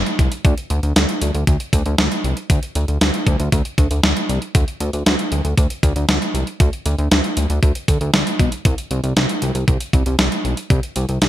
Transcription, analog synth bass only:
0.19 C2
0.45 D2
0.70 D2
0.83 D2
0.96 D2
1.22 D2
1.34 D2
1.47 D2
1.73 D2
1.86 D2
1.99 D2
2.24 C2
2.50 D2
2.76 D2
2.88 D2
3.01 D2
3.27 D2
3.40 D2
3.52 D2
3.78 D2
3.91 D2
4.04 D2
4.29 C2
4.55 D2
4.80 D2
4.93 D2
5.06 D2
5.32 D2
5.45 D2
5.58 D2
5.83 D2
5.96 D2
6.09 D2
6.34 C2
6.60 D2
6.86 D2
6.99 D2
7.11 D2
7.37 D2
7.50 D2
7.63 D2
7.88 D2
8.01 D2
8.14 D2
8.39 B1
8.65 C2
8.91 C2
9.04 C2
9.16 C2
9.42 C2
9.55 C2
9.68 C2
9.93 C2
10.06 C2
10.19 C2
10.45 B1
10.70 C2
10.96 C2
11.09 C2
11.22 C2

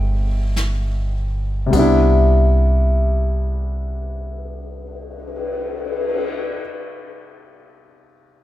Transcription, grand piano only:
Already playing: D3 E3 G3 B3 E5 G5
1.66 C3 G3
1.73 B3 D4
1.79 E4

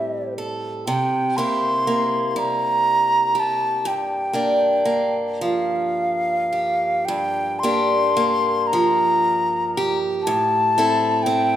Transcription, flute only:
Already playing: E5
0.87 G5
1.37 C6
2.31 C6
2.39 A#5
3.40 A5
3.87 G5
5.42 F5
7.05 G5
7.59 C6
8.67 A#5
10.23 A5
11.23 G5

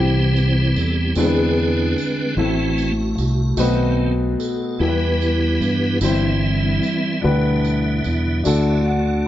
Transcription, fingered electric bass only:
Already playing: C2
0.76 E2
1.16 E2
2.37 A1
3.18 C2
3.57 B1
4.80 E2
5.61 G2
6.01 G1
7.24 D2
8.06 E2
8.46 D2

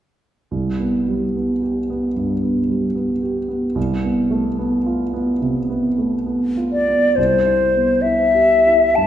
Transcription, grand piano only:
0.51 C2
0.79 B3
1.08 G3
1.36 B3
1.63 G4
1.90 B3
2.16 G2
2.43 B3
2.69 G3
2.95 B3
3.22 G4
3.49 B3
3.75 C2
4.03 B3
4.31 A3
4.59 B3
4.86 F4
5.14 B3
5.42 C3
5.70 B3
5.98 A3
6.26 B3
6.57 F4
6.88 B3
7.17 C2
7.45 E4
7.74 B3
8.04 E4
8.34 G4
8.67 E4
8.98 G2

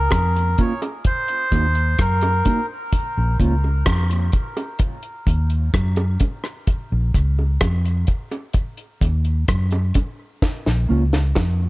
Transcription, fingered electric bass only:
0.13 F2
1.52 D#2
1.99 F#2
3.18 A#1
3.40 C#2
3.87 F2
5.27 D#2
5.74 F#2
6.92 A#1
7.15 C#2
7.62 F2
9.02 D#2
9.49 F#2
10.67 A#1
10.90 C#2
11.37 F2

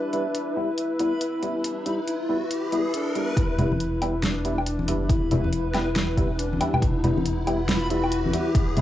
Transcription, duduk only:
Already playing: D4
0.56 E4
2.94 D4
3.37 E4
4.23 D4
5.10 E4
6.39 D4
6.82 E4
7.69 E4

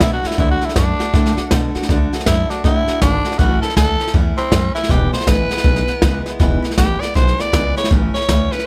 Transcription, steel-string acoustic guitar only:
0.00 D3 A3 D4 F#4
0.23 A3 D4 F#4
0.38 D3 A3 D4 F#4
0.61 A3 D4 F#4
0.75 D3 A3 D4 F#4
0.99 A3 D4 F#4
1.13 D3 A3 D4 F#4
1.37 A3 D4 F#4
1.51 D3 A3 D4 F#4
1.75 A3 D4 F#4
1.90 D3 A3 D4 F#4
2.13 A3 D4 F#4
2.26 D3 A3 D4 F#4
2.50 A3 D4 F#4
2.64 D3 A3 D4 F#4
2.87 A3 D4 F#4
3.01 D3 A3 D4 F#4
3.26 A3 D4 F#4
3.40 A2 E3 A3 C#4 E4
3.63 A3 C#4 E4
3.77 E3 A3 C#4 E4
4.00 A3 C#4 E4
4.14 A2 E3 A3 C#4 E4
4.38 A3 C#4 E4
4.52 E3 A3 C#4 E4
4.75 A3 C#4 E4
4.90 E2 B2 E3 G#3 B3 E4
5.12 E3 G#3 B3 E4
5.26 E3 G#3 B3 E4
5.49 E3 G#3 B3 E4
5.64 E2 B2 E3 G#3 B3 E4
5.87 E3 G#3 B3 E4
6.02 E3 G#3 B3 E4
6.26 E3 G#3 B3 E4
6.39 E2 B2 E3 G#3 B3 E4
6.62 E3 G#3 B3 E4
6.77 E3 G#3 B3 E4
7.00 E3 G#3 B3 E4
7.14 E2 B2 E3 G#3 B3 E4
7.38 E3 G#3 B3 E4
7.52 E3 G#3 B3 E4
7.76 E3 G#3 B3 E4
7.90 A2 E3 A3 C#4 E4
8.14 A3 C#4 E4
8.29 E3 A3 C#4 E4
8.53 A3 C#4 E4

